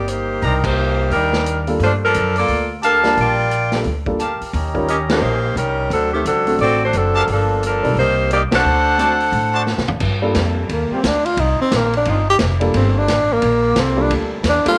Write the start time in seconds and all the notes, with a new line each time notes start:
Already playing: G1
0.08 A#3 D#4 G4 C5, closed hi-hat
0.42 C2 D4 D#4 A#4 C5 D5 A#5, open hi-hat
0.46 G3
0.64 A#3 D#4 G4 C5, kick, crash
1.10 D#2 G3 D4 D#4 A#4, open hi-hat
1.33 snare
1.46 closed hi-hat
1.67 G3 A#3 D4 F4 A4, open hi-hat
1.80 G2, open hi-hat
1.84 A3 D4 F4 C5
2.05 F3 D4 A4 A#4
2.14 F#2, closed hi-hat
2.36 A#3 F4 A4 D5, open hi-hat
2.48 D2, open hi-hat
2.82 D4 G4 A4 A#4 F5 A5, closed hi-hat
3.03 G3 A#3 D4 F4 A#4, snare, open hi-hat
3.17 A#1 F4 A#4 D5, open hi-hat
3.21 G5
3.51 closed hi-hat
3.72 G3 A#3 D4 F4 A4, snare, open hi-hat
3.84 D2, open hi-hat
4.06 G3 A#3 D4 F4 A4, kick
4.20 G4 A#4 F5 A5, closed hi-hat
4.41 muted upright bass stroke, open hi-hat
4.53 D#2 C#4 G4 D#5 A#5, open hi-hat
4.74 G3 C#4 D#4 F4 A#4, kick
4.88 C#4 G4 A#4 D#5, closed hi-hat
5.09 G3 A#3 C#4 D#4 F4 G4 A#4 C5, snare, ride
5.21 A#1
5.56 C2 G3 C#4 D#4 A#4, closed hi-hat
5.90 D2 F#3 C4 D4 A4, open hi-hat
6.14 D#3 A3 C4 G4
6.25 C#2 F#3 C4 D4 A4, closed hi-hat
6.47 A3 C4 D4 F#4 A4, open hi-hat
6.58 A1 C4 F#4 A4 D5, open hi-hat
6.85 A3 D4 F#4 C5
6.93 F#1 F#3 C4 D4 A4, closed hi-hat
7.15 G4 A#4 F5 A5
7.27 G1 D4, open hi-hat
7.32 F3 A#3 A4
7.63 F3 D4 A4 A#4, closed hi-hat
7.83 B1 G3 C4 D#4 A#4 D5, open hi-hat
7.95 C2 A#3 D#4 G4 C5, open hi-hat
8.31 A#3 D#4 G4 D5, closed hi-hat
8.51 C2 D4 F#4 A4 C5 D5 F#5 A5, snare, ride
8.65 D2
8.98 A3 C4 D4 F#4 A4 C5 D5 A5, closed hi-hat
9.20 open hi-hat
9.32 A2, open hi-hat
9.54 F#4 C5 D5 A5
9.67 snare
9.78 C3, snare
9.88 A2, floor tom
10.00 G2, kick, crash
10.22 G3 A#3 D4 F4 A4
10.34 F2 G3 A#3 F4 A4, snare, hi-hat pedal, ride
10.69 D#2 A#3, ride
10.90 G3 A#3 C4 F4 G4, muted upright bass stroke
11.03 D2 D4, snare, hi-hat pedal, ride
11.26 F4, ride
11.37 C2 D#4, ride
11.60 C4, muted upright bass stroke
11.71 A#1 D#3 C4 D4 A#4, snare, hi-hat pedal, ride
11.76 A#3
11.93 D4, ride
12.05 G1 D#3 C4 D4 F4, ride
12.10 D#4
12.30 G4
12.39 F1, snare, hi-hat pedal, ride
12.60 G3 A#3 D4 F4 A4, ride
12.74 G1 C4, ride
12.98 D4
13.08 A1, snare, hi-hat pedal, ride
13.33 A#3
13.42 A#1, ride
13.76 C2 G3 A#3 C4 F4 A4, snare, hi-hat pedal, ride
13.96 G3 A#3 D4 F4 A4
14.02 D4
14.10 D2, ride
14.43 E2, snare, hi-hat pedal, ride
14.49 D4
14.65 G3 A#3 D4 F4 A4, muted upright bass stroke, ride